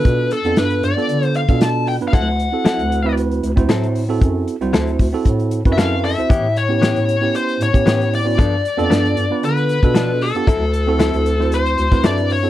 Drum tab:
HH |x-xxxxx-xxxxx-ox|x-x-xxx-xxxxxxo-|x-xxxxo-xxxxx-ox|x-x-xxx-xxxxxxo-|
SD |----o--o----o---|----o-------o---|----o-------o---|----o-------o---|
BD |o----------o----|o----------o----|o-----o-o--o----|o----------o----|

HH |x-xxxxx-xxxxx-ox|x-x-xxx-xxxxxxo-|
SD |----o-------o---|----o--o---oo---|
BD |o----------o----|o----------o----|